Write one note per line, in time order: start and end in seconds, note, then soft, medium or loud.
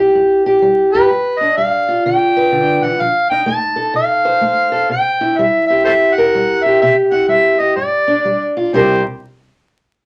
0.00 0.10 G3 medium
0.00 1.07 E4 medium
0.00 0.44 G4 medium
0.15 0.58 G2 medium
0.46 0.92 G4 medium
0.62 1.06 G3 medium
0.93 1.08 G4 medium
0.93 1.41 B4 loud
1.11 1.54 G2 medium
1.39 2.98 D4 medium
1.39 1.57 D#5 medium
1.57 2.01 G3 medium
1.57 2.01 F5 medium
1.89 2.98 F4 medium
2.06 2.49 D3 medium
2.06 2.85 G5 loud
2.37 2.99 B4 medium
2.52 2.82 D3 medium
2.84 3.00 E3 medium
2.84 3.02 F#5 loud
3.01 3.44 F3 medium
3.01 3.29 F5 loud
3.30 4.89 D#4 medium
3.30 3.46 G5 loud
3.46 3.91 A3 medium
3.46 3.92 A5 loud
3.76 4.71 A4 medium
3.94 4.39 C3 medium
3.94 4.87 F5 loud
4.25 6.17 C5 medium
4.41 4.86 A3 medium
4.72 4.88 A4 medium
4.89 5.34 C3 medium
4.89 5.39 G5 loud
5.21 6.80 E4 medium
5.38 5.83 G3 medium
5.38 5.66 E5 medium
5.67 6.65 G4 medium
5.67 5.84 E5 medium
5.85 6.31 G2 medium
5.85 5.93 A4 medium
5.85 5.92 C5 medium
5.85 6.16 E5 loud
6.15 6.80 A#4 medium
6.15 6.65 F#5 loud
6.35 6.79 G3 medium
6.63 7.60 G4 medium
6.63 6.81 E5 medium
6.82 7.26 C3 medium
6.82 6.95 E5 medium
7.12 7.75 E4 medium
7.12 7.28 F#5 medium
7.28 7.73 G3 medium
7.28 7.61 E5 medium
7.59 7.75 G4 medium
7.59 7.75 D#5 medium
7.76 8.21 G2 medium
7.76 8.51 D5 medium
8.07 8.71 D4 medium
8.25 8.69 G3 medium
8.57 8.72 F4 medium
8.73 9.00 C3 medium
8.73 9.01 G3 medium
8.73 9.01 E4 medium
8.73 9.01 G4 medium
8.73 9.02 A#4 medium
8.73 9.02 C5 medium